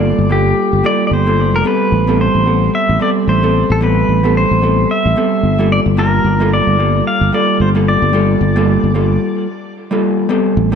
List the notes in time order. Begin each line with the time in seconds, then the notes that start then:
Already playing: G1 G3 A#3 F4 A4 D5
0.18 G1
0.29 G3 A#3 F4 G4 A4
0.73 G1
0.83 G3 A#3 F4 A4 D5
1.07 D5
1.11 G1 C5
1.26 G3 A#3 F4 A4
1.54 F1 A#4
1.64 G3 B3 C4 A4 B4
1.92 A1
2.07 G3 B3 C4 A4
2.21 C5
2.35 A1
2.46 G3 B3 C4 A4
2.75 E5
2.89 A1
2.99 G3 B3 C4 A4 D5
3.27 A1 C5
3.42 G3 B3 C4 A4
3.70 A1 A4
3.81 G3 B3 C4 A4 B4
4.09 A1
4.23 G3 B3 C4 A4
4.37 C5
4.51 A1
4.62 G3 B3 C4 A4
4.91 E5
5.05 A1
5.16 G3 B3 C4 A4
5.43 G1
5.59 G3 A#3 F4 A4
5.72 D5
5.86 G1
5.97 G3 A#3 F4 A#4 A5
6.24 G1
6.40 G3 A#3 F4 A4
6.53 D5
6.67 G1
6.79 G3 A#3 F4 A4
7.07 F5
7.21 G1
7.32 G3 A#3 F4 A4 D5
7.60 G1 C5
7.75 G3 A#3 F4 A4
7.88 D5
8.02 G1
8.13 G3 A#3 F4 A4
8.41 G1
8.56 G3 A#3 F4 A4
8.84 G1
8.94 G3 A#3 F4 A4
9.91 G3 A#3 F4 A4
10.29 G3 B3 C4 A4
10.57 A1
10.72 G3